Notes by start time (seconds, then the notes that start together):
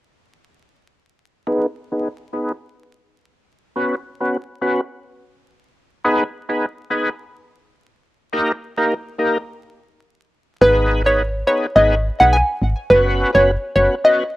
1.47 B3 D#4 G#4 B4
1.92 B3 D#4 G#4 B4
2.33 B3 D#4 G#4 B4
3.76 B3 C#4 F#4 B4
4.20 B3 C#4 F#4 B4
4.62 B3 C#4 F#4 B4
6.04 B3 D#4 G#4 B4
6.49 B3 D#4 G#4 B4
6.90 B3 D#4 G#4 B4
8.33 A#3 D#4 G4 A#4
8.77 A#3 D#4 G4 A#4
9.19 A#3 D#4 G4 A#4
10.61 G#1 B3 D#4 G#4 B4
11.06 B3 D#4 G#4 B4 C#5
11.47 B3 D#4 G#4 B4 C#5
11.75 G#1 B3 D#4 G#4 B4 D#5
12.20 B1 B3 D#4 G#4 B4 F#5
12.33 G#5
12.62 G#1
12.90 F#1 B3 C#4 F#4 B4
13.35 F#1 B3 C#4 F#4 B4 C#5
13.76 F#1 B3 C#4 F#4 B4 C#5
14.04 B3 C#4 F#4 B4 D#5